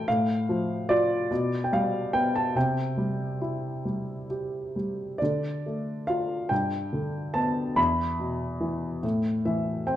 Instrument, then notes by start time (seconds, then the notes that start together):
grand piano
0.08 A2 F5
0.49 F3
0.89 F4 D5
1.31 B2
1.64 G5
1.73 G3 F5
2.13 B3 G5
2.35 A5
2.55 C3 G5
2.97 G3
3.41 E4
3.85 G3
4.30 G4
4.76 G3
5.18 D3 D5
5.66 A3
6.07 F4 F5
6.49 G2 G5
6.93 D3
7.34 B3 A5
7.76 E2 B5
8.19 B2
8.60 E3
9.03 A2
9.45 E3 E5
9.87 C4 G5